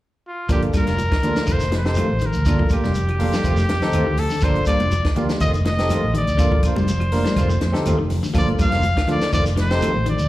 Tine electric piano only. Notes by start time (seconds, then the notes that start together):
0.50 A#3 D4 F4 A4
1.25 A#3 D4 F4 A4
1.85 C4 D#4 G4 A4
2.46 A#3 D4 F4 A4
3.20 A#3 D4 F4 A4
3.83 C4 D#4 G4 A4
4.44 A#3 D4 F4 A4
5.16 A#3 D4 F4 G4
5.79 C4 D#4 G4 A4
6.39 A#3 D4 F4 A4
7.12 A#3 D4 F4 A#4
7.72 C4 D#4 G4 A4
8.34 A#3 D4 F4 A4
9.08 A#3 D4 F4 A4
9.71 C4 D#4 G4 A4